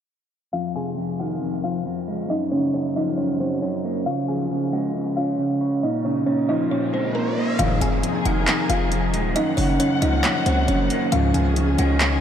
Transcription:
0.53 0.96 F2 medium
0.53 0.72 F4 medium
0.53 0.72 F5 loud
0.75 1.86 C3 medium
0.75 1.17 G#4 medium
0.75 1.17 G#5 medium
0.97 1.40 F2 medium
1.20 1.63 D#3 medium
1.20 1.61 F#4 medium
1.20 1.61 F#5 medium
1.42 1.84 F2 medium
1.64 2.30 F3 medium
1.64 2.26 F4 medium
1.64 2.26 F5 medium
1.86 2.30 F2 medium
2.08 2.30 G#3 medium
2.30 2.73 F#2 medium
2.30 2.49 D#4 medium
2.30 2.49 D#5 loud
2.51 3.62 C#3 medium
2.51 2.71 C#4 medium
2.51 2.71 C#5 medium
2.74 3.17 F#2 medium
2.74 2.93 C#4 medium
2.74 2.93 C#5 medium
2.96 3.40 F3 medium
2.96 3.15 D#4 medium
2.96 3.15 D#5 medium
3.18 3.61 F#2 medium
3.18 3.37 C#4 medium
3.18 3.37 C#5 medium
3.40 4.06 F#3 medium
3.40 3.60 C4 medium
3.40 3.59 C5 medium
3.62 4.06 F#2 medium
3.62 3.82 C#4 medium
3.62 3.81 C#5 medium
3.84 4.06 A#3 medium
4.06 4.49 C#3 medium
4.06 4.26 F4 medium
4.06 4.25 F5 loud
4.28 5.39 F3 medium
4.28 4.70 G#4 medium
4.28 4.70 G#5 medium
4.50 4.93 C#3 medium
4.73 5.83 G#3 medium
4.73 5.15 F#4 medium
4.73 5.14 F#5 medium
4.94 5.37 C#3 medium
5.17 5.83 C#4 medium
5.17 5.79 F4 medium
5.17 5.79 F5 medium
5.39 5.83 C#3 medium
5.61 5.83 C#5 medium
5.83 6.26 A#2 medium
5.83 6.02 D#4 medium
5.83 6.02 D#5 medium
5.83 riser medium
6.05 7.15 C#3 medium
6.05 6.24 C#4 medium
6.05 6.24 C#5 medium
6.26 6.70 A#2 medium
6.26 6.46 C#4 medium
6.26 6.46 C#5 medium
6.49 7.59 F3 medium
6.49 6.68 D#4 medium
6.49 6.68 D#5 medium
6.71 7.14 A#2 medium
6.71 6.91 C#4 medium
6.71 6.90 C#5 medium
6.93 7.37 G#3 medium
6.93 7.13 C4 medium
6.93 7.12 C5 medium
7.15 7.59 A#2 medium
7.15 7.56 A#4 medium
7.15 7.57 A#5 medium
7.37 7.59 A#3 medium
7.59 7.80 F1 loud
7.59 7.78 C2 loud
7.59 8.02 F2 medium
7.59 7.78 G#2 loud
7.59 7.78 D#3 loud
7.59 12.21 D#3 medium
7.59 9.34 D#4 medium
7.59 7.78 F4 medium
7.59 9.34 G#4 medium
7.59 7.78 F5 loud
7.59 closed hi-hat medium
7.81 8.03 F1 loud
7.81 8.92 C3 medium
7.81 8.23 G#4 medium
7.81 8.23 G#5 medium
7.81 closed hi-hat medium
8.03 8.46 F2 medium
8.03 closed hi-hat medium
8.25 8.47 F1 loud
8.25 8.69 D#3 medium
8.25 8.67 F#4 medium
8.25 8.67 F#5 medium
8.25 closed hi-hat medium
8.47 8.90 F2 medium
8.47 clap loud
8.47 closed hi-hat medium
8.70 9.15 F1 loud
8.70 9.36 F3 medium
8.70 9.32 F4 medium
8.70 9.32 F5 medium
8.70 closed hi-hat medium
8.92 9.35 F2 medium
8.92 closed hi-hat medium
9.14 9.35 D#1 loud
9.14 9.36 G#3 medium
9.14 closed hi-hat medium
9.36 9.79 F#2 medium
9.36 11.10 A#3 medium
9.36 9.55 D#4 medium
9.36 9.55 D#5 loud
9.36 11.10 F#5 medium
9.36 closed hi-hat medium
9.57 9.79 F#1 loud
9.57 10.68 C#3 medium
9.57 9.77 C#4 medium
9.57 9.76 C#5 medium
9.57 open hi-hat medium
9.80 10.23 F#2 medium
9.80 9.99 C#4 medium
9.80 9.99 C#5 medium
9.80 closed hi-hat medium
10.02 10.23 C#2 loud
10.02 10.46 F3 medium
10.02 10.21 D#4 medium
10.02 10.21 D#5 medium
10.02 closed hi-hat medium
10.23 10.67 F#2 medium
10.23 10.43 C#4 medium
10.23 10.43 C#5 medium
10.23 clap loud
10.23 closed hi-hat medium
10.46 10.67 C#2 loud
10.46 11.12 F#3 medium
10.46 10.65 C4 medium
10.46 10.65 C5 medium
10.46 closed hi-hat medium
10.68 10.89 F#1 loud
10.68 11.12 F#2 medium
10.68 10.87 C#4 medium
10.68 10.87 C#5 medium
10.68 closed hi-hat medium
10.90 11.12 A#3 medium
10.90 closed hi-hat medium
11.12 11.33 C#2 loud
11.12 11.31 C#2 loud
11.12 11.31 G#2 loud
11.12 11.55 C#3 medium
11.12 11.31 F3 loud
11.12 12.21 C#4 medium
11.12 11.32 F4 medium
11.12 12.21 G#4 medium
11.12 11.31 F5 loud
11.12 closed hi-hat medium
11.34 11.77 C#2 loud
11.34 12.21 F3 medium
11.34 11.76 G#4 medium
11.34 11.76 G#5 medium
11.34 closed hi-hat medium
11.56 11.99 C#3 medium
11.56 closed hi-hat medium
11.78 12.21 C#2 loud
11.78 12.21 G#3 medium
11.78 12.20 F#4 medium
11.78 12.20 F#5 medium
11.78 closed hi-hat medium
12.00 12.21 C#3 medium
12.00 clap loud
12.00 closed hi-hat medium

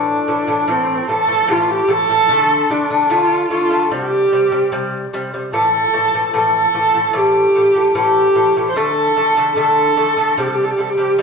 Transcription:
0.00 0.19 A2 medium
0.00 0.19 E3 loud
0.00 0.71 D4 medium
0.28 0.44 A2 medium
0.28 0.44 E3 medium
0.47 0.64 A2 medium
0.47 0.64 E3 medium
0.68 1.00 A2 medium
0.68 1.00 E3 medium
0.68 1.09 C4 medium
1.09 1.25 A2 medium
1.09 1.25 E3 medium
1.09 1.53 A4 loud
1.27 1.44 A2 medium
1.27 1.44 E3 medium
1.47 1.80 A2 loud
1.47 1.80 E3 loud
1.47 1.72 F4 medium
1.70 1.91 G4 medium
1.88 2.05 A2 medium
1.88 2.05 E3 medium
1.88 2.72 A4 loud
2.09 2.25 A2 medium
2.09 2.25 E3 medium
2.29 2.61 D3 medium
2.29 2.61 A3 loud
2.70 2.86 D3 medium
2.70 2.86 A3 medium
2.70 3.12 D4 medium
2.90 3.06 D3 medium
2.90 3.06 A3 medium
3.09 3.42 D3 medium
3.09 3.42 A3 loud
3.09 3.50 F4 medium
3.50 3.66 D3 medium
3.50 3.66 A3 medium
3.50 3.88 F4 medium
3.70 3.86 D3 medium
3.70 3.87 A3 medium
3.91 4.23 C3 medium
3.91 4.23 G3 medium
3.91 5.08 G4 medium
4.32 4.48 C3 medium
4.32 4.48 G3 medium
4.52 4.68 C3 medium
4.52 4.68 G3 medium
4.72 5.04 C3 medium
4.72 5.04 G3 loud
5.13 5.29 C3 medium
5.13 5.29 G3 medium
5.34 5.49 C3 medium
5.34 5.49 G3 medium
5.53 5.85 A2 medium
5.53 5.85 E3 medium
5.53 6.29 A4 loud
5.93 6.09 A2 medium
5.93 6.09 E3 medium
6.14 6.30 A2 medium
6.14 6.30 E3 medium
6.33 6.65 A2 medium
6.33 6.66 E3 medium
6.33 7.18 A4 loud
6.74 6.90 A2 medium
6.74 6.90 E3 medium
6.94 7.10 A2 medium
6.94 7.10 E3 medium
7.13 7.46 A2 medium
7.13 7.46 E3 loud
7.13 7.96 G4 loud
7.55 7.71 A2 medium
7.55 7.71 E3 medium
7.76 7.91 A2 medium
7.76 7.91 E3 medium
7.95 8.27 A2 medium
7.95 8.27 E3 loud
7.95 8.66 G4 medium
8.35 8.51 A2 medium
8.35 8.51 E3 medium
8.56 8.72 A2 medium
8.56 8.72 E3 medium
8.69 8.79 C5 medium
8.76 9.08 D3 medium
8.76 9.08 A3 loud
8.76 9.57 A4 loud
9.16 9.32 D3 medium
9.16 9.32 A3 medium
9.36 9.52 D3 medium
9.36 9.53 A3 medium
9.56 9.88 D3 medium
9.56 9.89 A3 medium
9.56 10.41 A4 loud
9.97 10.13 D3 medium
9.97 10.13 A3 medium
10.16 10.33 D3 medium
10.16 10.33 A3 medium
10.38 10.70 C3 medium
10.38 10.70 G3 medium
10.38 10.48 G4 medium
10.46 10.56 A4 medium
10.54 10.65 G4 medium
10.64 10.72 A4 medium
10.71 10.81 G4 medium
10.78 10.94 C3 medium
10.78 10.94 G3 medium
10.78 10.91 A4 medium
10.89 11.20 G4 loud
10.97 11.14 C3 medium
10.97 11.14 G3 medium
11.18 11.22 C3 loud
11.18 11.22 G3 loud

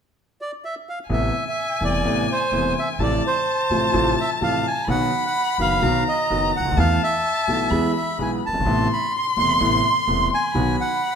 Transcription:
0.41 0.51 D5 medium
0.65 0.75 E5 soft
0.89 0.99 F5 soft
1.09 1.30 A1 medium
1.09 1.30 A2 medium
1.09 1.30 C3 soft
1.09 1.30 A3 soft
1.09 1.30 B3 soft
1.09 1.30 E4 soft
1.09 1.45 E5 medium
1.09 3.01 G#5 medium
1.49 1.84 E5 medium
1.81 2.01 E1 soft
1.81 2.01 E2 soft
1.81 2.01 C3 soft
1.81 2.01 A3 soft
1.81 2.01 B3 soft
1.81 2.01 E4 soft
1.81 2.27 D5 medium
2.04 2.25 A1 medium
2.04 2.25 A2 soft
2.04 2.25 C3 soft
2.04 2.25 A3 soft
2.04 2.25 B3 soft
2.04 2.25 E4 soft
2.32 2.74 C5 medium
2.51 2.72 E1 soft
2.51 2.72 E2 soft
2.51 2.72 C3 soft
2.51 2.72 A3 soft
2.51 2.72 B3 soft
2.51 2.73 E4 soft
2.79 2.89 E5 medium
2.98 3.19 A1 medium
2.98 3.20 A1 medium
2.98 3.20 A2 medium
2.98 3.19 C3 soft
2.98 3.20 F3 soft
2.98 3.20 A3 soft
2.98 3.20 F4 soft
2.98 3.23 D5 medium
2.98 4.86 A5 medium
3.27 4.15 C5 medium
3.70 3.90 A1 soft
3.70 3.91 A1 soft
3.70 3.91 A2 soft
3.70 3.91 C3 soft
3.70 3.90 F3 soft
3.70 3.91 A3 soft
3.70 3.91 F4 soft
3.93 4.14 A1 medium
3.93 4.14 A2 medium
3.93 4.13 C3 soft
3.93 4.14 F3 soft
3.93 4.14 A3 soft
3.93 4.14 F4 medium
4.20 4.30 E5 medium
4.41 4.61 A1 soft
4.41 4.61 A2 soft
4.41 4.61 C3 soft
4.41 4.61 F3 soft
4.41 4.61 A3 soft
4.41 4.61 F4 soft
4.41 4.66 F5 medium
4.67 4.88 G#5 medium
4.87 5.08 B1 medium
4.87 5.08 B2 medium
4.87 5.08 D#3 soft
4.87 5.08 F#3 soft
4.87 5.08 B3 soft
4.87 5.08 F#4 medium
4.87 5.24 F#5 medium
4.87 5.84 B5 medium
5.26 5.58 F#5 medium
5.58 5.78 F#1 soft
5.58 5.79 F#1 soft
5.58 5.79 F#2 soft
5.58 5.79 D#3 soft
5.58 5.79 F#3 soft
5.58 5.79 B3 soft
5.58 5.79 F#4 soft
5.58 6.04 F5 medium
5.82 6.02 B1 medium
5.82 6.02 B2 medium
5.82 6.02 D#3 soft
5.82 6.02 F#3 soft
5.82 6.02 B3 soft
5.82 6.02 F#4 medium
5.82 6.79 A#5 medium
6.08 6.51 D#5 medium
6.30 6.50 F#1 soft
6.30 6.50 F#2 soft
6.30 6.50 D#3 soft
6.30 6.50 F#3 soft
6.30 6.50 B3 soft
6.30 6.50 F#4 soft
6.56 6.64 C#2 soft
6.56 6.65 C#2 soft
6.56 6.79 F#5 medium
6.65 6.71 D2 soft
6.71 6.77 D#2 soft
6.71 6.77 D#2 medium
6.77 6.97 E2 medium
6.77 6.97 E3 medium
6.77 6.97 A3 soft
6.77 6.97 B3 soft
6.77 6.97 A4 medium
6.77 7.02 F5 medium
6.77 7.72 A5 medium
7.03 7.92 E5 medium
7.48 7.67 B1 soft
7.48 7.68 B1 soft
7.48 7.67 B2 soft
7.48 7.67 E3 soft
7.48 7.68 A3 soft
7.48 7.68 B3 soft
7.48 7.68 A4 soft
7.70 7.91 E2 medium
7.70 7.91 E3 medium
7.70 7.91 G#3 soft
7.70 7.91 B3 soft
7.70 7.91 G#4 medium
7.70 8.42 B5 medium
7.97 8.18 E5 medium
8.18 8.38 B1 soft
8.18 8.39 B2 soft
8.18 8.38 E3 soft
8.18 8.38 G#3 soft
8.18 8.38 B3 soft
8.18 8.39 G#4 soft
8.18 8.31 G#5 medium
8.46 8.52 F#1 soft
8.46 8.54 F#1 soft
8.46 8.88 A5 medium
8.53 8.59 G1 soft
8.53 8.60 G1 soft
8.59 8.65 G#1 soft
8.59 8.66 G#1 soft
8.65 8.86 A1 medium
8.65 8.86 A2 medium
8.65 8.85 C3 soft
8.65 8.86 A3 soft
8.65 8.86 B3 soft
8.65 8.86 E4 medium
8.65 10.50 C6 medium
8.93 9.13 B5 medium
9.16 9.26 C6 medium
9.37 9.57 E1 soft
9.37 9.57 E2 soft
9.37 9.57 C3 soft
9.37 9.57 A3 soft
9.37 9.57 B3 soft
9.37 9.57 E4 soft
9.37 10.28 C6 medium
9.60 9.80 A1 medium
9.60 9.80 A2 medium
9.60 9.80 C3 soft
9.60 9.80 A3 soft
9.60 9.80 B3 soft
9.60 9.80 E4 medium
10.07 10.27 E1 soft
10.07 10.27 E2 soft
10.07 10.27 C3 soft
10.07 10.27 A3 soft
10.07 10.27 B3 soft
10.07 10.27 E4 soft
10.34 10.76 G#5 medium
10.54 10.74 B1 medium
10.54 10.75 B2 medium
10.54 10.74 D#3 soft
10.54 10.74 F#3 soft
10.54 10.74 B3 soft
10.54 10.75 F#4 medium
10.54 11.15 B5 medium
10.81 11.15 F#5 medium

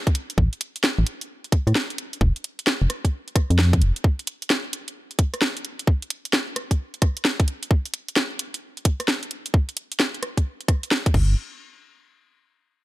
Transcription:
0.07 kick loud
0.07 closed hi-hat medium
0.15 closed hi-hat medium
0.30 closed hi-hat medium
0.38 0.49 A1 medium
0.38 kick loud
0.53 closed hi-hat soft
0.61 closed hi-hat loud
0.76 closed hi-hat medium
0.84 snare loud
0.99 1.04 A1 medium
1.07 closed hi-hat medium
1.21 closed hi-hat medium
1.44 closed hi-hat soft
1.52 kick loud
1.52 closed hi-hat loud
1.67 1.73 A2 loud
1.67 cross-stick medium
1.67 closed hi-hat medium
1.75 snare loud
1.90 closed hi-hat soft
1.98 closed hi-hat medium
2.13 closed hi-hat medium
2.21 2.32 F1 loud
2.21 kick loud
2.36 closed hi-hat soft
2.44 closed hi-hat loud
2.59 closed hi-hat medium
2.67 snare loud
2.82 2.88 F1 medium
2.90 cross-stick medium
2.90 closed hi-hat medium
3.05 kick medium
3.05 closed hi-hat medium
3.28 closed hi-hat soft
3.36 kick loud
3.36 cross-stick medium
3.36 closed hi-hat loud
3.50 3.83 F2 medium
3.50 closed hi-hat medium
3.59 snare loud
3.73 kick loud
3.73 closed hi-hat medium
3.81 3.92 F1 loud
3.81 closed hi-hat medium
3.96 closed hi-hat medium
4.04 kick loud
4.19 closed hi-hat medium
4.27 closed hi-hat loud
4.42 closed hi-hat medium
4.50 snare loud
4.73 closed hi-hat medium
4.88 closed hi-hat medium
5.11 closed hi-hat soft
5.19 kick loud
5.19 closed hi-hat loud
5.34 cross-stick soft
5.34 closed hi-hat medium
5.42 snare loud
5.57 closed hi-hat medium
5.65 closed hi-hat medium
5.79 closed hi-hat medium
5.87 kick loud
6.02 closed hi-hat medium
6.10 closed hi-hat loud
6.25 closed hi-hat medium
6.33 snare loud
6.56 cross-stick medium
6.56 closed hi-hat medium
6.71 kick medium
6.71 closed hi-hat medium
6.94 closed hi-hat soft
7.02 kick loud
7.02 cross-stick soft
7.02 closed hi-hat loud
7.17 closed hi-hat medium
7.25 snare loud
7.40 kick loud
7.40 closed hi-hat medium
7.48 closed hi-hat medium
7.63 closed hi-hat medium
7.71 kick loud
7.86 closed hi-hat medium
7.94 closed hi-hat loud
8.08 closed hi-hat medium
8.16 snare loud
8.39 closed hi-hat medium
8.54 closed hi-hat medium
8.77 closed hi-hat soft
8.85 kick loud
8.85 closed hi-hat loud
9.00 cross-stick soft
9.00 closed hi-hat medium
9.08 snare loud
9.23 closed hi-hat medium
9.31 closed hi-hat medium
9.46 closed hi-hat medium
9.54 kick loud
9.69 closed hi-hat medium
9.77 closed hi-hat loud
9.92 closed hi-hat medium
10.00 snare loud
10.14 closed hi-hat soft
10.23 cross-stick medium
10.23 closed hi-hat medium
10.37 kick medium
10.37 closed hi-hat medium
10.61 closed hi-hat soft
10.68 kick loud
10.68 cross-stick medium
10.68 closed hi-hat loud
10.83 closed hi-hat medium
10.91 snare loud
11.06 kick loud
11.06 closed hi-hat medium
11.14 11.35 G1 loud
11.14 kick loud
11.14 crash medium

